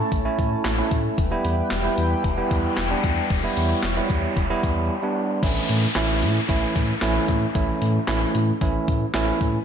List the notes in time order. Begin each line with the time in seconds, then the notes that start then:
Already playing: A3 C#4 E4 A4 C#5 A5
0.12 A1, kick, closed hi-hat
0.25 A3 C#4 E4
0.39 A2, kick, closed hi-hat
0.64 A1, snare, clap, closed hi-hat
0.78 A3 C#4 E4
0.91 A2, kick, closed hi-hat
1.18 E1 E4 G4 B4 G5, kick, closed hi-hat, noise sweep
1.31 G3 B3 E4
1.45 E2, closed hi-hat
1.70 E1, snare, clap, closed hi-hat
1.84 G3 B3 E4
1.98 E2, closed hi-hat
2.24 E1, kick, closed hi-hat
2.37 G3 B3 E4
2.51 E2, kick, closed hi-hat
2.77 E1, snare, clap, closed hi-hat
2.90 G3 B3 D4
3.04 E2, kick, closed hi-hat
3.30 E1 C#5, kick, closed hi-hat
3.44 G3 B3 E4
3.57 E2, closed hi-hat
3.83 E1, snare, clap, closed hi-hat
3.97 G3 B3 E4
4.10 E2, kick, closed hi-hat
4.37 E1, kick, closed hi-hat
4.50 G3 B3 E4
4.63 E2, kick, closed hi-hat
5.03 G3 B3 D4
5.43 A1 E3 A3 C#4 E4, kick, closed hi-hat, crash, downlifter
5.69 A2, closed hi-hat
5.95 A1 E3 A3 C#4 E4, snare, clap, closed hi-hat
6.22 A2, closed hi-hat
6.49 A1 E3 A3 C#4 E4, kick, closed hi-hat
6.76 A2, kick, closed hi-hat
7.01 A1 E3 A3 C#4 E4, snare, clap, closed hi-hat
7.28 A2, kick, closed hi-hat
7.55 A1 E3 A3 C#4 E4, kick, closed hi-hat
7.82 A2, closed hi-hat
8.07 A1 E3 A3 C#4 E4, snare, clap, closed hi-hat
8.35 A2, closed hi-hat
8.61 A1 E3 A3 C#4 E4, kick, closed hi-hat
8.88 A2, kick, closed hi-hat
9.14 A1 E3 A3 C#4 E4, snare, clap, closed hi-hat
9.41 A2, kick, closed hi-hat